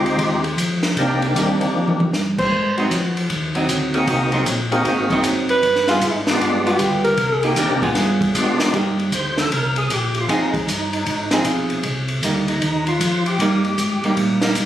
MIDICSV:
0, 0, Header, 1, 6, 480
1, 0, Start_track
1, 0, Key_signature, -3, "minor"
1, 0, Tempo, 388350
1, 1198, Time_signature, 4, 2, 24, 8
1, 18114, End_track
2, 0, Start_track
2, 0, Title_t, "Alto saxophone"
2, 0, Program_c, 0, 65
2, 2948, Note_on_c, 0, 72, 106
2, 3395, Note_off_c, 0, 72, 0
2, 3431, Note_on_c, 0, 66, 70
2, 3877, Note_off_c, 0, 66, 0
2, 6801, Note_on_c, 0, 71, 108
2, 7241, Note_off_c, 0, 71, 0
2, 7274, Note_on_c, 0, 65, 83
2, 7717, Note_off_c, 0, 65, 0
2, 8240, Note_on_c, 0, 67, 84
2, 8679, Note_off_c, 0, 67, 0
2, 8707, Note_on_c, 0, 70, 98
2, 9310, Note_off_c, 0, 70, 0
2, 18114, End_track
3, 0, Start_track
3, 0, Title_t, "Tonewheel organ"
3, 0, Program_c, 1, 16
3, 0, Note_on_c, 1, 56, 74
3, 0, Note_on_c, 1, 60, 66
3, 0, Note_on_c, 1, 63, 66
3, 0, Note_on_c, 1, 65, 65
3, 0, Note_on_c, 1, 67, 82
3, 487, Note_off_c, 1, 56, 0
3, 490, Note_off_c, 1, 60, 0
3, 490, Note_off_c, 1, 63, 0
3, 492, Note_off_c, 1, 65, 0
3, 493, Note_off_c, 1, 67, 0
3, 1212, Note_on_c, 1, 58, 66
3, 1212, Note_on_c, 1, 62, 58
3, 1213, Note_on_c, 1, 60, 60
3, 1218, Note_on_c, 1, 67, 69
3, 1223, Note_on_c, 1, 63, 61
3, 2545, Note_off_c, 1, 58, 0
3, 2545, Note_off_c, 1, 60, 0
3, 2545, Note_off_c, 1, 62, 0
3, 2548, Note_off_c, 1, 67, 0
3, 2550, Note_off_c, 1, 63, 0
3, 4873, Note_on_c, 1, 63, 61
3, 4877, Note_on_c, 1, 58, 71
3, 4879, Note_on_c, 1, 60, 62
3, 4883, Note_on_c, 1, 66, 58
3, 4885, Note_on_c, 1, 68, 74
3, 5487, Note_off_c, 1, 63, 0
3, 5489, Note_off_c, 1, 58, 0
3, 5490, Note_off_c, 1, 60, 0
3, 5492, Note_off_c, 1, 66, 0
3, 5493, Note_off_c, 1, 68, 0
3, 5829, Note_on_c, 1, 60, 73
3, 5830, Note_on_c, 1, 58, 78
3, 5830, Note_on_c, 1, 66, 72
3, 5832, Note_on_c, 1, 63, 72
3, 5837, Note_on_c, 1, 68, 83
3, 6444, Note_off_c, 1, 60, 0
3, 6445, Note_off_c, 1, 58, 0
3, 6445, Note_off_c, 1, 66, 0
3, 6446, Note_off_c, 1, 63, 0
3, 6449, Note_off_c, 1, 68, 0
3, 7759, Note_on_c, 1, 56, 70
3, 7762, Note_on_c, 1, 62, 64
3, 7764, Note_on_c, 1, 59, 66
3, 7766, Note_on_c, 1, 65, 63
3, 7771, Note_on_c, 1, 67, 76
3, 8368, Note_off_c, 1, 56, 0
3, 8369, Note_off_c, 1, 62, 0
3, 8370, Note_off_c, 1, 59, 0
3, 8372, Note_off_c, 1, 65, 0
3, 8374, Note_off_c, 1, 67, 0
3, 9362, Note_on_c, 1, 58, 62
3, 9367, Note_on_c, 1, 60, 60
3, 9369, Note_on_c, 1, 62, 61
3, 9373, Note_on_c, 1, 63, 63
3, 9374, Note_on_c, 1, 67, 75
3, 9637, Note_off_c, 1, 58, 0
3, 9640, Note_off_c, 1, 60, 0
3, 9641, Note_off_c, 1, 62, 0
3, 9643, Note_off_c, 1, 63, 0
3, 9643, Note_off_c, 1, 67, 0
3, 10324, Note_on_c, 1, 56, 67
3, 10330, Note_on_c, 1, 59, 66
3, 10331, Note_on_c, 1, 67, 77
3, 10333, Note_on_c, 1, 65, 68
3, 10334, Note_on_c, 1, 62, 64
3, 10799, Note_off_c, 1, 56, 0
3, 10801, Note_off_c, 1, 59, 0
3, 10802, Note_off_c, 1, 67, 0
3, 10803, Note_off_c, 1, 62, 0
3, 10803, Note_off_c, 1, 65, 0
3, 11295, Note_on_c, 1, 72, 77
3, 11585, Note_off_c, 1, 72, 0
3, 11607, Note_on_c, 1, 69, 81
3, 11760, Note_off_c, 1, 69, 0
3, 11786, Note_on_c, 1, 70, 83
3, 12071, Note_off_c, 1, 70, 0
3, 12084, Note_on_c, 1, 68, 82
3, 12238, Note_off_c, 1, 68, 0
3, 12276, Note_on_c, 1, 67, 62
3, 12556, Note_off_c, 1, 67, 0
3, 12588, Note_on_c, 1, 65, 76
3, 12731, Note_off_c, 1, 65, 0
3, 12763, Note_on_c, 1, 63, 66
3, 14129, Note_off_c, 1, 63, 0
3, 15438, Note_on_c, 1, 63, 81
3, 15879, Note_off_c, 1, 63, 0
3, 15922, Note_on_c, 1, 65, 80
3, 16361, Note_off_c, 1, 65, 0
3, 16406, Note_on_c, 1, 67, 95
3, 17001, Note_off_c, 1, 67, 0
3, 17070, Note_on_c, 1, 67, 75
3, 17501, Note_off_c, 1, 67, 0
3, 18114, End_track
4, 0, Start_track
4, 0, Title_t, "Hollow-body jazz guitar"
4, 0, Program_c, 2, 26
4, 1674, Note_on_c, 2, 55, 53
4, 1680, Note_on_c, 2, 58, 51
4, 1686, Note_on_c, 2, 63, 59
4, 1956, Note_off_c, 2, 55, 0
4, 1959, Note_off_c, 2, 58, 0
4, 1962, Note_off_c, 2, 63, 0
4, 3432, Note_on_c, 2, 54, 64
4, 3445, Note_on_c, 2, 60, 69
4, 3454, Note_on_c, 2, 63, 69
4, 3584, Note_off_c, 2, 54, 0
4, 3590, Note_off_c, 2, 60, 0
4, 3595, Note_off_c, 2, 63, 0
4, 4388, Note_on_c, 2, 54, 67
4, 4398, Note_on_c, 2, 60, 66
4, 4410, Note_on_c, 2, 63, 74
4, 5005, Note_off_c, 2, 54, 0
4, 5010, Note_off_c, 2, 60, 0
4, 5016, Note_off_c, 2, 63, 0
4, 5350, Note_on_c, 2, 54, 63
4, 5357, Note_on_c, 2, 60, 64
4, 5368, Note_on_c, 2, 63, 66
4, 5502, Note_off_c, 2, 54, 0
4, 5506, Note_off_c, 2, 60, 0
4, 5511, Note_off_c, 2, 63, 0
4, 6319, Note_on_c, 2, 54, 79
4, 6329, Note_on_c, 2, 60, 78
4, 6333, Note_on_c, 2, 63, 88
4, 6929, Note_off_c, 2, 54, 0
4, 6934, Note_off_c, 2, 60, 0
4, 6936, Note_off_c, 2, 63, 0
4, 7273, Note_on_c, 2, 55, 68
4, 7278, Note_on_c, 2, 59, 70
4, 7278, Note_on_c, 2, 65, 71
4, 7291, Note_on_c, 2, 68, 76
4, 7423, Note_off_c, 2, 55, 0
4, 7425, Note_off_c, 2, 65, 0
4, 7426, Note_off_c, 2, 59, 0
4, 7432, Note_off_c, 2, 68, 0
4, 8224, Note_on_c, 2, 55, 61
4, 8236, Note_on_c, 2, 59, 69
4, 8240, Note_on_c, 2, 65, 66
4, 8840, Note_off_c, 2, 55, 0
4, 8846, Note_off_c, 2, 59, 0
4, 8848, Note_off_c, 2, 65, 0
4, 9191, Note_on_c, 2, 58, 74
4, 9197, Note_on_c, 2, 63, 73
4, 9205, Note_on_c, 2, 67, 79
4, 9637, Note_off_c, 2, 58, 0
4, 9639, Note_off_c, 2, 63, 0
4, 9644, Note_off_c, 2, 67, 0
4, 9672, Note_on_c, 2, 59, 71
4, 9677, Note_on_c, 2, 68, 82
4, 9684, Note_on_c, 2, 65, 76
4, 10283, Note_off_c, 2, 59, 0
4, 10286, Note_off_c, 2, 68, 0
4, 10289, Note_off_c, 2, 65, 0
4, 10800, Note_on_c, 2, 58, 49
4, 10809, Note_on_c, 2, 63, 54
4, 10811, Note_on_c, 2, 67, 59
4, 11525, Note_off_c, 2, 58, 0
4, 11529, Note_off_c, 2, 63, 0
4, 11530, Note_off_c, 2, 67, 0
4, 12712, Note_on_c, 2, 53, 52
4, 12715, Note_on_c, 2, 60, 47
4, 12726, Note_on_c, 2, 68, 61
4, 12727, Note_on_c, 2, 63, 57
4, 12992, Note_off_c, 2, 53, 0
4, 12993, Note_off_c, 2, 60, 0
4, 12999, Note_off_c, 2, 63, 0
4, 12999, Note_off_c, 2, 68, 0
4, 13996, Note_on_c, 2, 53, 65
4, 13999, Note_on_c, 2, 60, 78
4, 14010, Note_on_c, 2, 68, 83
4, 14013, Note_on_c, 2, 63, 74
4, 14606, Note_off_c, 2, 53, 0
4, 14608, Note_off_c, 2, 60, 0
4, 14613, Note_off_c, 2, 68, 0
4, 14615, Note_off_c, 2, 63, 0
4, 15125, Note_on_c, 2, 55, 52
4, 15133, Note_on_c, 2, 58, 55
4, 15139, Note_on_c, 2, 63, 59
4, 15399, Note_off_c, 2, 55, 0
4, 15404, Note_off_c, 2, 58, 0
4, 15406, Note_off_c, 2, 63, 0
4, 16571, Note_on_c, 2, 55, 64
4, 16575, Note_on_c, 2, 58, 78
4, 16582, Note_on_c, 2, 63, 75
4, 16843, Note_off_c, 2, 55, 0
4, 16845, Note_off_c, 2, 58, 0
4, 16849, Note_off_c, 2, 63, 0
4, 17356, Note_on_c, 2, 55, 62
4, 17365, Note_on_c, 2, 58, 68
4, 17373, Note_on_c, 2, 63, 67
4, 17801, Note_off_c, 2, 55, 0
4, 17805, Note_off_c, 2, 58, 0
4, 17809, Note_off_c, 2, 63, 0
4, 17826, Note_on_c, 2, 55, 70
4, 17836, Note_on_c, 2, 58, 76
4, 17837, Note_on_c, 2, 63, 80
4, 17980, Note_off_c, 2, 55, 0
4, 17985, Note_off_c, 2, 58, 0
4, 17985, Note_off_c, 2, 63, 0
4, 18114, End_track
5, 0, Start_track
5, 0, Title_t, "Tonewheel organ"
5, 0, Program_c, 3, 16
5, 0, Note_on_c, 3, 38, 85
5, 216, Note_off_c, 3, 38, 0
5, 221, Note_on_c, 3, 39, 86
5, 695, Note_off_c, 3, 39, 0
5, 707, Note_on_c, 3, 41, 84
5, 1178, Note_off_c, 3, 41, 0
5, 1189, Note_on_c, 3, 36, 79
5, 1659, Note_off_c, 3, 36, 0
5, 1666, Note_on_c, 3, 39, 92
5, 1961, Note_off_c, 3, 39, 0
5, 1983, Note_on_c, 3, 39, 38
5, 2069, Note_off_c, 3, 39, 0
5, 2151, Note_on_c, 3, 41, 82
5, 2620, Note_off_c, 3, 41, 0
5, 2626, Note_on_c, 3, 43, 79
5, 3099, Note_off_c, 3, 43, 0
5, 3115, Note_on_c, 3, 44, 77
5, 3583, Note_off_c, 3, 44, 0
5, 3595, Note_on_c, 3, 41, 84
5, 4063, Note_off_c, 3, 41, 0
5, 4077, Note_on_c, 3, 39, 86
5, 4544, Note_off_c, 3, 39, 0
5, 4556, Note_on_c, 3, 38, 78
5, 5023, Note_off_c, 3, 38, 0
5, 5031, Note_on_c, 3, 36, 76
5, 5501, Note_off_c, 3, 36, 0
5, 5506, Note_on_c, 3, 34, 93
5, 5978, Note_off_c, 3, 34, 0
5, 5990, Note_on_c, 3, 32, 81
5, 6459, Note_off_c, 3, 32, 0
5, 6467, Note_on_c, 3, 30, 84
5, 6938, Note_off_c, 3, 30, 0
5, 6949, Note_on_c, 3, 31, 78
5, 7418, Note_off_c, 3, 31, 0
5, 7421, Note_on_c, 3, 32, 89
5, 7894, Note_off_c, 3, 32, 0
5, 7917, Note_on_c, 3, 31, 85
5, 8382, Note_off_c, 3, 31, 0
5, 8391, Note_on_c, 3, 38, 86
5, 8858, Note_off_c, 3, 38, 0
5, 8867, Note_on_c, 3, 36, 77
5, 9336, Note_off_c, 3, 36, 0
5, 9343, Note_on_c, 3, 39, 93
5, 9503, Note_off_c, 3, 39, 0
5, 9514, Note_on_c, 3, 36, 60
5, 9669, Note_on_c, 3, 34, 65
5, 9674, Note_off_c, 3, 36, 0
5, 9820, Note_off_c, 3, 34, 0
5, 9830, Note_on_c, 3, 43, 86
5, 10297, Note_off_c, 3, 43, 0
5, 10310, Note_on_c, 3, 47, 83
5, 10777, Note_off_c, 3, 47, 0
5, 10791, Note_on_c, 3, 43, 70
5, 11257, Note_off_c, 3, 43, 0
5, 11268, Note_on_c, 3, 38, 85
5, 11736, Note_off_c, 3, 38, 0
5, 11754, Note_on_c, 3, 36, 79
5, 12219, Note_off_c, 3, 36, 0
5, 12231, Note_on_c, 3, 34, 81
5, 12697, Note_off_c, 3, 34, 0
5, 12711, Note_on_c, 3, 29, 74
5, 13178, Note_off_c, 3, 29, 0
5, 13186, Note_on_c, 3, 31, 89
5, 13655, Note_off_c, 3, 31, 0
5, 13665, Note_on_c, 3, 32, 80
5, 14135, Note_off_c, 3, 32, 0
5, 14147, Note_on_c, 3, 35, 80
5, 14616, Note_off_c, 3, 35, 0
5, 14621, Note_on_c, 3, 36, 73
5, 15094, Note_off_c, 3, 36, 0
5, 15110, Note_on_c, 3, 38, 84
5, 15579, Note_off_c, 3, 38, 0
5, 15586, Note_on_c, 3, 39, 88
5, 16056, Note_off_c, 3, 39, 0
5, 16069, Note_on_c, 3, 41, 80
5, 16538, Note_off_c, 3, 41, 0
5, 16547, Note_on_c, 3, 43, 70
5, 17017, Note_off_c, 3, 43, 0
5, 17028, Note_on_c, 3, 44, 87
5, 17321, Note_off_c, 3, 44, 0
5, 17342, Note_on_c, 3, 44, 40
5, 17428, Note_off_c, 3, 44, 0
5, 17510, Note_on_c, 3, 46, 75
5, 17979, Note_off_c, 3, 46, 0
5, 17990, Note_on_c, 3, 43, 80
5, 18114, Note_off_c, 3, 43, 0
5, 18114, End_track
6, 0, Start_track
6, 0, Title_t, "Drums"
6, 72, Note_on_c, 9, 51, 46
6, 196, Note_off_c, 9, 51, 0
6, 229, Note_on_c, 9, 51, 61
6, 232, Note_on_c, 9, 36, 20
6, 353, Note_off_c, 9, 51, 0
6, 355, Note_off_c, 9, 36, 0
6, 546, Note_on_c, 9, 51, 46
6, 669, Note_off_c, 9, 51, 0
6, 713, Note_on_c, 9, 36, 17
6, 717, Note_on_c, 9, 44, 57
6, 717, Note_on_c, 9, 51, 61
6, 837, Note_off_c, 9, 36, 0
6, 841, Note_off_c, 9, 44, 0
6, 841, Note_off_c, 9, 51, 0
6, 1023, Note_on_c, 9, 38, 42
6, 1025, Note_on_c, 9, 51, 46
6, 1146, Note_off_c, 9, 38, 0
6, 1149, Note_off_c, 9, 51, 0
6, 1195, Note_on_c, 9, 36, 24
6, 1197, Note_on_c, 9, 51, 59
6, 1318, Note_off_c, 9, 36, 0
6, 1321, Note_off_c, 9, 51, 0
6, 1511, Note_on_c, 9, 51, 41
6, 1634, Note_off_c, 9, 51, 0
6, 1676, Note_on_c, 9, 36, 17
6, 1682, Note_on_c, 9, 44, 55
6, 1682, Note_on_c, 9, 51, 56
6, 1799, Note_off_c, 9, 36, 0
6, 1805, Note_off_c, 9, 44, 0
6, 1805, Note_off_c, 9, 51, 0
6, 1990, Note_on_c, 9, 51, 46
6, 2113, Note_off_c, 9, 51, 0
6, 2318, Note_on_c, 9, 47, 58
6, 2441, Note_off_c, 9, 47, 0
6, 2474, Note_on_c, 9, 47, 81
6, 2598, Note_off_c, 9, 47, 0
6, 2637, Note_on_c, 9, 38, 52
6, 2640, Note_on_c, 9, 44, 57
6, 2761, Note_off_c, 9, 38, 0
6, 2764, Note_off_c, 9, 44, 0
6, 2948, Note_on_c, 9, 36, 78
6, 2948, Note_on_c, 9, 49, 70
6, 3071, Note_off_c, 9, 36, 0
6, 3072, Note_off_c, 9, 49, 0
6, 3119, Note_on_c, 9, 36, 24
6, 3243, Note_off_c, 9, 36, 0
6, 3431, Note_on_c, 9, 51, 41
6, 3554, Note_off_c, 9, 51, 0
6, 3598, Note_on_c, 9, 44, 57
6, 3598, Note_on_c, 9, 51, 64
6, 3599, Note_on_c, 9, 36, 25
6, 3722, Note_off_c, 9, 36, 0
6, 3722, Note_off_c, 9, 44, 0
6, 3722, Note_off_c, 9, 51, 0
6, 3917, Note_on_c, 9, 51, 46
6, 4041, Note_off_c, 9, 51, 0
6, 4077, Note_on_c, 9, 51, 64
6, 4079, Note_on_c, 9, 36, 28
6, 4200, Note_off_c, 9, 51, 0
6, 4203, Note_off_c, 9, 36, 0
6, 4388, Note_on_c, 9, 51, 45
6, 4511, Note_off_c, 9, 51, 0
6, 4558, Note_on_c, 9, 44, 59
6, 4558, Note_on_c, 9, 51, 64
6, 4559, Note_on_c, 9, 36, 20
6, 4682, Note_off_c, 9, 36, 0
6, 4682, Note_off_c, 9, 44, 0
6, 4682, Note_off_c, 9, 51, 0
6, 4868, Note_on_c, 9, 51, 44
6, 4992, Note_off_c, 9, 51, 0
6, 5035, Note_on_c, 9, 51, 62
6, 5036, Note_on_c, 9, 36, 23
6, 5159, Note_off_c, 9, 51, 0
6, 5160, Note_off_c, 9, 36, 0
6, 5338, Note_on_c, 9, 51, 43
6, 5462, Note_off_c, 9, 51, 0
6, 5514, Note_on_c, 9, 36, 18
6, 5514, Note_on_c, 9, 44, 52
6, 5514, Note_on_c, 9, 51, 66
6, 5637, Note_off_c, 9, 36, 0
6, 5638, Note_off_c, 9, 44, 0
6, 5638, Note_off_c, 9, 51, 0
6, 5833, Note_on_c, 9, 51, 44
6, 5957, Note_off_c, 9, 51, 0
6, 5995, Note_on_c, 9, 36, 23
6, 5996, Note_on_c, 9, 51, 60
6, 6119, Note_off_c, 9, 36, 0
6, 6120, Note_off_c, 9, 51, 0
6, 6305, Note_on_c, 9, 36, 50
6, 6308, Note_on_c, 9, 51, 46
6, 6428, Note_off_c, 9, 36, 0
6, 6432, Note_off_c, 9, 51, 0
6, 6471, Note_on_c, 9, 44, 62
6, 6471, Note_on_c, 9, 51, 70
6, 6473, Note_on_c, 9, 36, 20
6, 6595, Note_off_c, 9, 44, 0
6, 6595, Note_off_c, 9, 51, 0
6, 6596, Note_off_c, 9, 36, 0
6, 6786, Note_on_c, 9, 51, 46
6, 6909, Note_off_c, 9, 51, 0
6, 6953, Note_on_c, 9, 36, 21
6, 6957, Note_on_c, 9, 51, 61
6, 7077, Note_off_c, 9, 36, 0
6, 7081, Note_off_c, 9, 51, 0
6, 7116, Note_on_c, 9, 38, 29
6, 7240, Note_off_c, 9, 38, 0
6, 7262, Note_on_c, 9, 38, 43
6, 7265, Note_on_c, 9, 51, 44
6, 7385, Note_off_c, 9, 38, 0
6, 7389, Note_off_c, 9, 51, 0
6, 7430, Note_on_c, 9, 36, 20
6, 7434, Note_on_c, 9, 44, 52
6, 7434, Note_on_c, 9, 51, 70
6, 7554, Note_off_c, 9, 36, 0
6, 7558, Note_off_c, 9, 44, 0
6, 7558, Note_off_c, 9, 51, 0
6, 7748, Note_on_c, 9, 38, 61
6, 7750, Note_on_c, 9, 51, 47
6, 7871, Note_off_c, 9, 38, 0
6, 7874, Note_off_c, 9, 51, 0
6, 7916, Note_on_c, 9, 36, 22
6, 7927, Note_on_c, 9, 51, 58
6, 8040, Note_off_c, 9, 36, 0
6, 8051, Note_off_c, 9, 51, 0
6, 8240, Note_on_c, 9, 51, 49
6, 8363, Note_off_c, 9, 51, 0
6, 8393, Note_on_c, 9, 36, 24
6, 8393, Note_on_c, 9, 44, 56
6, 8393, Note_on_c, 9, 51, 65
6, 8516, Note_off_c, 9, 36, 0
6, 8516, Note_off_c, 9, 44, 0
6, 8516, Note_off_c, 9, 51, 0
6, 8707, Note_on_c, 9, 51, 46
6, 8831, Note_off_c, 9, 51, 0
6, 8867, Note_on_c, 9, 51, 66
6, 8871, Note_on_c, 9, 36, 23
6, 8991, Note_off_c, 9, 51, 0
6, 8995, Note_off_c, 9, 36, 0
6, 9181, Note_on_c, 9, 51, 47
6, 9304, Note_off_c, 9, 51, 0
6, 9346, Note_on_c, 9, 44, 64
6, 9346, Note_on_c, 9, 51, 69
6, 9353, Note_on_c, 9, 36, 26
6, 9470, Note_off_c, 9, 44, 0
6, 9470, Note_off_c, 9, 51, 0
6, 9476, Note_off_c, 9, 36, 0
6, 9667, Note_on_c, 9, 36, 57
6, 9672, Note_on_c, 9, 51, 50
6, 9791, Note_off_c, 9, 36, 0
6, 9796, Note_off_c, 9, 51, 0
6, 9826, Note_on_c, 9, 38, 38
6, 9828, Note_on_c, 9, 51, 62
6, 9834, Note_on_c, 9, 36, 19
6, 9949, Note_off_c, 9, 38, 0
6, 9952, Note_off_c, 9, 51, 0
6, 9958, Note_off_c, 9, 36, 0
6, 10146, Note_on_c, 9, 36, 60
6, 10154, Note_on_c, 9, 51, 51
6, 10270, Note_off_c, 9, 36, 0
6, 10278, Note_off_c, 9, 51, 0
6, 10316, Note_on_c, 9, 36, 26
6, 10320, Note_on_c, 9, 44, 61
6, 10320, Note_on_c, 9, 51, 69
6, 10439, Note_off_c, 9, 36, 0
6, 10443, Note_off_c, 9, 44, 0
6, 10443, Note_off_c, 9, 51, 0
6, 10624, Note_on_c, 9, 38, 56
6, 10626, Note_on_c, 9, 51, 49
6, 10748, Note_off_c, 9, 38, 0
6, 10750, Note_off_c, 9, 51, 0
6, 10794, Note_on_c, 9, 36, 21
6, 10797, Note_on_c, 9, 51, 58
6, 10918, Note_off_c, 9, 36, 0
6, 10920, Note_off_c, 9, 51, 0
6, 11117, Note_on_c, 9, 51, 41
6, 11241, Note_off_c, 9, 51, 0
6, 11273, Note_on_c, 9, 36, 19
6, 11275, Note_on_c, 9, 44, 58
6, 11275, Note_on_c, 9, 51, 64
6, 11397, Note_off_c, 9, 36, 0
6, 11398, Note_off_c, 9, 44, 0
6, 11398, Note_off_c, 9, 51, 0
6, 11588, Note_on_c, 9, 38, 44
6, 11590, Note_on_c, 9, 51, 41
6, 11711, Note_off_c, 9, 38, 0
6, 11714, Note_off_c, 9, 51, 0
6, 11755, Note_on_c, 9, 36, 18
6, 11765, Note_on_c, 9, 51, 58
6, 11879, Note_off_c, 9, 36, 0
6, 11888, Note_off_c, 9, 51, 0
6, 12064, Note_on_c, 9, 51, 43
6, 12187, Note_off_c, 9, 51, 0
6, 12233, Note_on_c, 9, 36, 18
6, 12239, Note_on_c, 9, 44, 49
6, 12239, Note_on_c, 9, 51, 62
6, 12357, Note_off_c, 9, 36, 0
6, 12363, Note_off_c, 9, 44, 0
6, 12363, Note_off_c, 9, 51, 0
6, 12539, Note_on_c, 9, 51, 43
6, 12663, Note_off_c, 9, 51, 0
6, 12715, Note_on_c, 9, 36, 22
6, 12721, Note_on_c, 9, 51, 57
6, 12838, Note_off_c, 9, 36, 0
6, 12844, Note_off_c, 9, 51, 0
6, 13025, Note_on_c, 9, 36, 45
6, 13030, Note_on_c, 9, 51, 41
6, 13148, Note_off_c, 9, 36, 0
6, 13153, Note_off_c, 9, 51, 0
6, 13196, Note_on_c, 9, 36, 22
6, 13205, Note_on_c, 9, 44, 50
6, 13205, Note_on_c, 9, 51, 60
6, 13320, Note_off_c, 9, 36, 0
6, 13329, Note_off_c, 9, 44, 0
6, 13329, Note_off_c, 9, 51, 0
6, 13511, Note_on_c, 9, 51, 43
6, 13635, Note_off_c, 9, 51, 0
6, 13672, Note_on_c, 9, 36, 25
6, 13675, Note_on_c, 9, 51, 56
6, 13795, Note_off_c, 9, 36, 0
6, 13799, Note_off_c, 9, 51, 0
6, 13979, Note_on_c, 9, 38, 43
6, 13981, Note_on_c, 9, 51, 45
6, 14102, Note_off_c, 9, 38, 0
6, 14105, Note_off_c, 9, 51, 0
6, 14147, Note_on_c, 9, 44, 52
6, 14147, Note_on_c, 9, 51, 66
6, 14148, Note_on_c, 9, 36, 18
6, 14270, Note_off_c, 9, 44, 0
6, 14270, Note_off_c, 9, 51, 0
6, 14272, Note_off_c, 9, 36, 0
6, 14459, Note_on_c, 9, 51, 48
6, 14582, Note_off_c, 9, 51, 0
6, 14626, Note_on_c, 9, 51, 61
6, 14628, Note_on_c, 9, 36, 24
6, 14750, Note_off_c, 9, 51, 0
6, 14752, Note_off_c, 9, 36, 0
6, 14935, Note_on_c, 9, 51, 43
6, 15059, Note_off_c, 9, 51, 0
6, 15110, Note_on_c, 9, 36, 21
6, 15114, Note_on_c, 9, 44, 59
6, 15114, Note_on_c, 9, 51, 60
6, 15234, Note_off_c, 9, 36, 0
6, 15238, Note_off_c, 9, 44, 0
6, 15238, Note_off_c, 9, 51, 0
6, 15426, Note_on_c, 9, 51, 47
6, 15550, Note_off_c, 9, 51, 0
6, 15592, Note_on_c, 9, 36, 17
6, 15595, Note_on_c, 9, 51, 58
6, 15716, Note_off_c, 9, 36, 0
6, 15718, Note_off_c, 9, 51, 0
6, 15904, Note_on_c, 9, 51, 43
6, 16028, Note_off_c, 9, 51, 0
6, 16074, Note_on_c, 9, 36, 23
6, 16076, Note_on_c, 9, 44, 51
6, 16076, Note_on_c, 9, 51, 70
6, 16197, Note_off_c, 9, 36, 0
6, 16200, Note_off_c, 9, 44, 0
6, 16200, Note_off_c, 9, 51, 0
6, 16389, Note_on_c, 9, 51, 47
6, 16513, Note_off_c, 9, 51, 0
6, 16554, Note_on_c, 9, 36, 22
6, 16561, Note_on_c, 9, 51, 62
6, 16677, Note_off_c, 9, 36, 0
6, 16684, Note_off_c, 9, 51, 0
6, 16865, Note_on_c, 9, 51, 41
6, 16989, Note_off_c, 9, 51, 0
6, 17031, Note_on_c, 9, 44, 53
6, 17031, Note_on_c, 9, 51, 61
6, 17032, Note_on_c, 9, 36, 18
6, 17155, Note_off_c, 9, 44, 0
6, 17155, Note_off_c, 9, 51, 0
6, 17156, Note_off_c, 9, 36, 0
6, 17349, Note_on_c, 9, 51, 43
6, 17473, Note_off_c, 9, 51, 0
6, 17512, Note_on_c, 9, 51, 65
6, 17514, Note_on_c, 9, 36, 25
6, 17636, Note_off_c, 9, 51, 0
6, 17637, Note_off_c, 9, 36, 0
6, 17817, Note_on_c, 9, 38, 53
6, 17819, Note_on_c, 9, 51, 49
6, 17940, Note_off_c, 9, 38, 0
6, 17943, Note_off_c, 9, 51, 0
6, 17986, Note_on_c, 9, 44, 47
6, 17986, Note_on_c, 9, 51, 65
6, 17992, Note_on_c, 9, 36, 23
6, 18110, Note_off_c, 9, 44, 0
6, 18110, Note_off_c, 9, 51, 0
6, 18114, Note_off_c, 9, 36, 0
6, 18114, End_track
0, 0, End_of_file